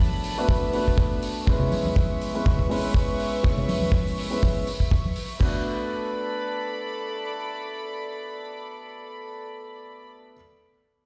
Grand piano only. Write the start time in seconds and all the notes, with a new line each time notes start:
Already playing: A3 B3 D4 F#4 C#5
0.38 A3 B3 D4 F#4 B4
0.73 A3 B3 D4 F#4 B4
1.47 G#3 B3 C#4 E4 B4
2.34 G#3 B3 C#4 E4 B4
2.69 G#3 B3 C#4 E4 B4
3.43 G#3 B3 C#4 E4 C#5
4.31 G#3 B3 C#4 E4 B4
5.39 A3 B3 D4 F#4 B4